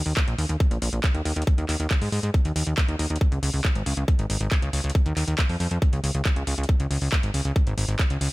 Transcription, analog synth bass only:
0.06 0.13 D#2 loud
0.28 0.35 A#1 medium
0.38 0.46 D#2 loud
0.49 0.56 D#2 medium
0.71 0.78 A#1 medium
0.82 0.89 A#1 loud
0.93 1.00 A#1 medium
1.15 1.22 D#2 medium
1.25 1.33 D#2 loud
1.36 1.43 D#2 loud
1.58 1.65 D#2 medium
1.69 1.76 D#2 loud
1.80 1.87 D#2 medium
2.01 2.09 G#2 medium
2.12 2.19 G#2 loud
2.23 2.30 G#2 medium
2.45 2.52 D#2 medium
2.56 2.63 D#2 loud
2.67 2.74 D#2 medium
2.88 2.96 D#2 medium
2.99 3.06 D#2 loud
3.10 3.17 D#2 loud
3.32 3.39 C#2 medium
3.43 3.50 C#2 loud
3.54 3.61 C#2 medium
3.75 3.83 G#1 medium
3.86 3.93 C#2 loud
3.97 4.04 C#2 medium
4.19 4.26 G#1 medium
4.30 4.37 G#1 medium
4.41 4.48 G#1 medium
4.62 4.69 C#2 medium
4.73 4.80 C#2 loud
4.84 4.91 C#2 medium
5.06 5.13 D#2 medium
5.17 5.24 D#2 loud
5.28 5.35 D#2 medium
5.49 5.56 F2 medium
5.60 5.67 F2 loud
5.71 5.78 F2 loud
5.93 6.00 C#2 medium
6.04 6.11 C#2 loud
6.15 6.22 C#2 medium
6.36 6.43 C#2 medium
6.47 6.54 C#2 loud
6.58 6.65 C#2 medium
6.80 6.87 C#2 medium
6.91 6.98 C#2 loud
7.02 7.09 C#2 medium
7.23 7.30 G#1 medium
7.34 7.41 C#2 loud
7.45 7.52 C#2 medium
7.67 7.74 G#1 medium
7.78 7.85 G#1 loud
7.88 7.96 G#1 loud
8.10 8.17 C#2 medium
8.21 8.28 C#2 loud

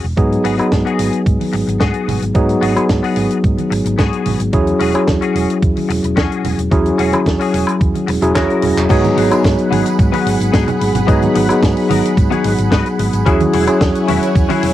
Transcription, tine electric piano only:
0.17 0.55 F#3 medium
0.17 0.55 B3 medium
0.17 0.55 D#4 medium
0.17 0.55 G#4 loud
0.58 2.32 F#3 medium
0.58 2.32 B3 medium
0.58 2.32 D#4 medium
0.58 2.33 G#4 medium
2.35 2.73 F#3 medium
2.35 2.73 B3 medium
2.35 2.73 D#4 medium
2.35 2.74 G#4 loud
2.75 4.50 F#3 medium
2.75 4.50 B3 medium
2.75 4.51 D#4 medium
2.75 4.51 G#4 medium
4.53 4.91 F#3 medium
4.53 4.92 C#4 medium
4.53 4.92 E4 medium
4.53 4.92 G#4 loud
4.94 6.68 F#3 medium
4.94 6.68 C#4 medium
4.94 6.69 E4 medium
4.94 6.69 G#4 medium
6.71 7.09 F#3 medium
6.71 7.10 C#4 medium
6.71 7.10 E4 medium
6.71 7.10 G#4 loud
7.12 8.19 F#3 medium
7.12 8.19 C#4 medium
7.12 8.20 E4 medium
7.12 8.20 G#4 medium
8.22 8.32 F#3 loud
8.22 8.32 C#4 medium
8.22 8.32 E4 medium
8.22 8.32 G#4 loud
8.35 8.87 F#3 medium
8.35 8.87 C#4 medium
8.35 8.87 E4 medium
8.35 8.87 G#4 loud
8.90 9.28 F#3 loud
8.90 9.28 B3 medium
8.90 9.28 D#4 medium
8.90 9.28 G#4 loud
9.30 11.05 F#3 medium
9.30 11.05 B3 medium
9.30 11.05 D#4 medium
9.30 11.06 G#4 medium
11.08 11.46 F#3 medium
11.08 11.46 B3 medium
11.08 11.46 D#4 medium
11.08 11.46 G#4 loud
11.49 13.23 F#3 medium
11.49 13.23 B3 medium
11.49 13.23 D#4 medium
11.49 13.24 G#4 medium
13.26 13.64 F#3 loud
13.26 13.64 C#4 medium
13.26 13.64 E4 medium
13.26 13.65 G#4 loud
13.67 14.73 F#3 medium
13.67 14.73 C#4 medium
13.67 14.73 E4 medium
13.67 14.73 G#4 medium

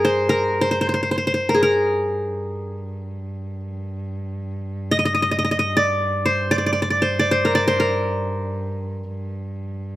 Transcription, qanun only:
0.00 0.92 G#4 medium
0.00 0.29 A#4 medium
0.05 0.61 C5 medium
0.29 1.43 A#4 medium
0.61 0.71 C5 medium
0.71 0.81 C5 medium
0.81 0.88 C5 medium
0.89 0.93 C5 soft
0.94 1.02 C5 medium
1.03 1.11 C5 soft
1.11 1.17 C5 medium
1.18 1.27 C5 soft
1.27 1.34 C5 medium
1.34 2.40 C5 medium
1.49 1.62 A#4 medium
1.54 2.76 G#4 soft
1.63 3.91 A#4 medium
4.91 4.98 D#5 medium
4.99 5.05 D#5 medium
5.05 5.14 D#5 medium
5.15 5.22 D#5 medium
5.22 5.31 D#5 medium
5.31 5.38 D#5 medium
5.39 5.44 D#5 medium
5.45 5.51 D#5 medium
5.51 5.59 D#5 medium
5.59 5.83 D#5 medium
5.77 6.51 D5 medium
6.26 7.01 C5 medium
6.51 6.58 D5 medium
6.58 6.66 D5 soft
6.66 6.72 D5 medium
6.73 6.82 D5 soft
6.82 6.90 D5 medium
6.90 7.19 D5 soft
7.02 7.31 C5 medium
7.19 7.55 D5 medium
7.31 7.67 C5 medium
7.45 7.79 A#4 medium
7.55 8.53 D5 medium
7.68 8.73 C5 medium
7.80 9.32 A#4 medium

